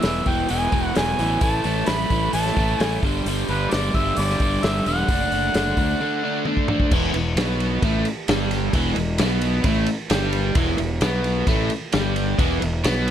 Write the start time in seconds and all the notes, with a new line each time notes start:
0.02 E1 E2 B2 E3 E5, snare, open hi-hat
0.26 E1 E2 B2 E3 G5, kick, open hi-hat
0.49 E1 E2 B2 E3 G#5, open hi-hat
0.72 E1 E2 B2 E3, kick, open hi-hat
0.95 E1 E2 B2 E3 G#5, snare, open hi-hat
1.18 A1 E2 B2 E3, open hi-hat
1.41 A1 A2 E3 A3 A5, kick, open hi-hat
1.64 A1 A2 E3 A3, open hi-hat
1.86 A1 A2 E3 A3 B5, snare, open hi-hat
2.10 A1 A2 E3 A3, kick, open hi-hat
2.33 A1 A2 E3 A3 A5, open hi-hat
2.46 snare
2.57 A1 A2 E3 A3, kick, open hi-hat
2.79 A1 A2 E3 A3 G#5, snare, open hi-hat
3.03 G1 G2 D3 G3, kick, open hi-hat
3.26 G1 G2 D3 G3, open hi-hat
3.48 G1 G2 D3 G3 B4, open hi-hat
3.71 G1 G2 D3 G3 D5, snare, open hi-hat
3.94 G1 G2 D3 G3 E5, kick, open hi-hat
4.16 G1 G2 D3 G3 D5, open hi-hat
4.30 snare
4.40 G1 G2 D3 G3, kick, open hi-hat
4.63 G1 G2 D3 G3 E5, snare, open hi-hat
4.86 E1 G2 D3 G3 F#5, open hi-hat
5.08 F#1 D3 A3 D4, kick, open hi-hat
5.32 F#1 D3 A3 D4, open hi-hat
5.54 F#1 D3 A3 D4, snare, open hi-hat
5.77 D2 D3 A3 D4, kick, open hi-hat
6.00 D3 A3 D4
6.24 D3 A3 D4
6.45 D3 A3 D4, high tom
6.57 kick
6.68 D3 A3 D4, mid tom
6.80 kick
6.91 E1 E2 E3, kick, crash
7.14 E1 E2, ride
7.36 B1 B2 B3, snare, ride
7.60 ride
7.82 A1 A2 A3, kick, ride
8.05 ride
8.28 G1 G2 G3, snare, ride
8.51 snare, ride
8.73 E1 E2 E3, kick, ride
8.96 E1 E2, ride
9.18 B1 B2 B3, snare, ride
9.41 ride
9.64 A1 A2 A3, kick, ride
9.86 ride
10.10 G1 G2 G3, snare, ride
10.33 ride
10.55 E1 E2 E3, kick, ride
10.78 E1 E2, ride
11.01 B1 B2 B3, snare, ride
11.24 ride
11.47 A1 A2 A3, kick, ride
11.70 ride
11.92 G1 G2 G3, snare, ride
12.16 ride
12.38 E1 E2 E3, kick, ride
12.62 E1 E2, ride
12.84 B1 B2 B3, snare, ride
13.08 ride